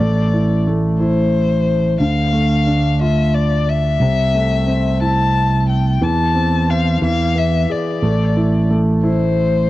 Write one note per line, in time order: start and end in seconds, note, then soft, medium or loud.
0.00 1.96 A1 medium
0.00 0.66 A3 soft
0.00 0.63 D5 medium
0.34 0.99 E4 soft
0.67 1.96 A3 soft
1.00 1.97 E4 soft
1.00 1.96 C5 medium
2.00 3.97 D2 medium
2.00 3.97 D3 medium
2.00 2.97 F5 medium
2.33 3.63 A3 soft
2.67 3.97 D4 soft
3.01 3.98 F4 soft
3.01 3.36 E5 medium
3.34 3.70 D5 medium
3.69 5.02 E5 medium
4.00 5.97 C2 medium
4.00 5.98 C3 medium
4.35 5.64 A3 soft
4.67 5.97 C4 medium
5.01 5.99 E4 soft
5.01 5.65 A5 loud
5.70 6.04 G5 medium
6.01 6.98 E2 medium
6.01 6.99 E3 medium
6.01 6.71 A5 medium
6.34 7.00 C4 soft
6.69 7.01 C5 soft
6.69 7.03 F5 medium
7.02 7.65 E2 medium
7.02 7.99 E3 medium
7.02 7.39 F5 medium
7.35 8.00 B3 soft
7.35 7.73 E5 medium
7.69 8.02 G#4 soft
7.69 8.71 D5 medium
8.02 9.70 A1 medium
8.02 8.69 A3 soft
8.37 9.02 E4 soft
8.71 9.70 A3 soft
9.04 9.70 E4 soft
9.04 9.70 C5 medium